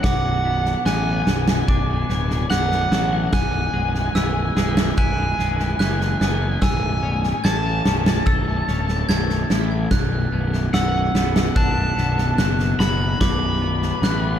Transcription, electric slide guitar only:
0.04 F#5
0.86 G#5
2.50 F#5
3.33 G#5
4.98 G#5
6.63 G#5
7.45 A5
10.74 F#5
11.57 A5
12.80 B5
13.21 B5

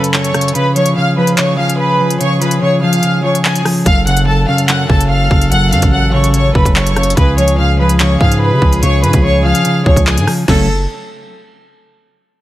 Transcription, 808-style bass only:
3.86 F#1
4.90 F#1
5.31 F#1
5.52 F#1
5.72 F#2
5.83 A1
6.55 F#1
6.65 F#1
7.17 C#2
8.21 G#2
8.52 C#3
8.62 C#2
8.83 C#2
9.03 G#2
9.14 C#2
9.86 C#2
9.96 C#2
10.17 G#2
10.48 F#1

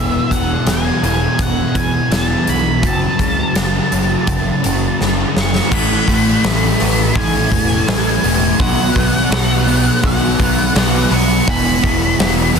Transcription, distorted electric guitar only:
Already playing: E2 B2 E3
0.68 E2 B2 E3
1.04 B2 E3
1.74 B2 E3
2.11 E2 B2 E3
2.82 F#2 C#3 F#3
3.54 F#2 C#3 F#3
3.91 C#3 F#3
4.62 C#3 F#3
4.99 F#2 C#3 F#3
5.71 A2 E3 A3
6.08 E3 A3
6.44 A2 E3 A3
6.80 E3 A3
7.15 A2 E3 A3
7.51 E3 A3
7.88 A2 E3 A3
8.24 E3 A3
8.59 B2 F#3 B3
8.96 F#3 B3
9.31 B2 F#3 B3
9.67 F#3 B3
10.03 B2 F#3 B3
10.39 F#3 B3
10.74 B2 F#3 B3
11.11 F#3 B3
11.47 E2 B2 E3
11.82 B2 E3
12.19 E2 B2 E3
12.55 E3

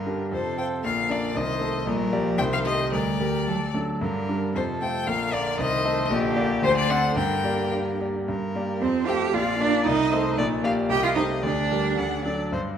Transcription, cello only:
Already playing: D3
0.32 C3
0.85 D3
1.37 D#3
1.87 G3
2.12 F3
2.39 D#3
2.92 G3
3.48 F#3
3.74 A3
4.01 D3
4.55 C3
5.07 D3
5.58 D#3
6.10 D3
6.63 D3
7.16 D3
8.81 C4
9.07 G4
9.34 F4
9.60 D4
9.86 D#4
10.90 G4
11.04 F4
11.16 D#4
11.43 D4

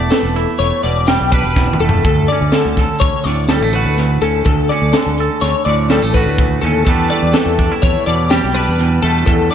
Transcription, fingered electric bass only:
0.00 E1
0.23 E1
0.60 E1
0.84 E1
1.21 B1
1.44 E1
1.80 E1
2.04 D2
2.41 D2
2.65 D2
3.01 D2
3.25 D2
3.61 A1
3.85 D2
4.21 D2
4.46 D2
4.82 D2
5.06 D2
5.42 D2
5.66 D2
6.03 A1
6.26 D2
6.63 D#2
7.23 E2
7.46 E2
7.83 E2
8.07 E2
8.44 B1
8.68 E2
9.03 E2
9.27 E2

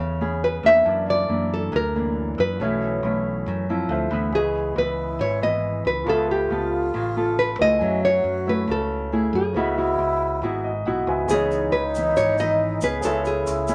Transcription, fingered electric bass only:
Already playing: E2
0.63 E2
0.86 F#2
1.29 F#2
1.73 D2
2.38 F#2
2.60 B1
3.03 B1
3.46 F#2
3.89 D2
4.11 D2
4.32 C#2
4.76 C#2
5.19 G#1
5.85 C#2
6.06 C#2
6.50 C#2
6.94 A1
7.59 C#2
7.81 F#2
8.24 F#2
8.68 C#2
9.33 F#2
9.54 C#2
9.99 C#2
10.42 G#1
10.85 B1
11.07 C#2
11.28 C#2
11.72 C#2
12.16 G#1
12.82 C#2
13.04 C#2
13.47 C#2

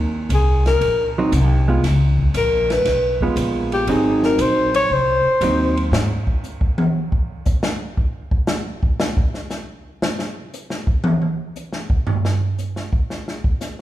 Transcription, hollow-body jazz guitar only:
1.18 F#3 C4 D#4
1.68 G#3 B3 F4
3.22 G#3 B3 F4
3.88 F#3 C4 D#4
5.42 F#3 C4 D#4

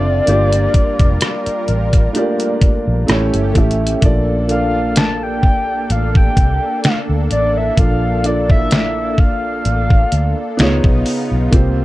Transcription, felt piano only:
Already playing: C4 D4 F4 A4 D5 E5
0.26 A#3 D4 F4 G4
0.30 D5
2.13 A3 D4 F4 G4
2.17 A#3 D5
3.07 A3 C#4 E4 G4 C#5
3.54 A3 C#4 E4 G4
3.58 E5
4.00 A#3 D4 F4 A4 D5
4.47 A#3 D4 F4 A4 F5
7.76 A#3 D4 F4 A4
7.80 D5
8.23 A#3 D4 F4 A4 D5
10.57 B3 D#4 F4 G#4
10.61 C#5
11.51 A#3 C4 F4 G4
11.55 C5

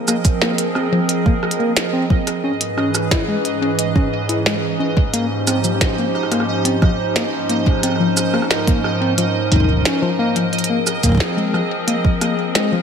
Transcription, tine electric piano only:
0.08 A#3
0.42 A#3
0.75 C4
0.92 F3
1.26 A#3
1.60 A#3
1.93 C4
2.10 F3
2.44 C#4
2.78 C#4
3.11 E4
3.28 G#3
3.62 C#4
3.96 C#4
4.29 E4
4.46 G#3
4.80 C#4
5.13 A#3
5.47 C4
5.64 F3
5.98 A#3
6.31 A#3
6.65 C4
6.82 F3
7.16 A#3
7.49 A#3
7.83 C4
8.00 F3
8.34 A#3
8.67 A#3
9.01 C4
9.18 F3
9.52 D#4
9.85 C#4
10.02 F3
10.19 A#3
10.36 F3
10.70 A#3
11.03 A#3
11.37 G#3
11.54 F3
11.88 A#3
12.21 A#3
12.55 G#3
12.72 F3

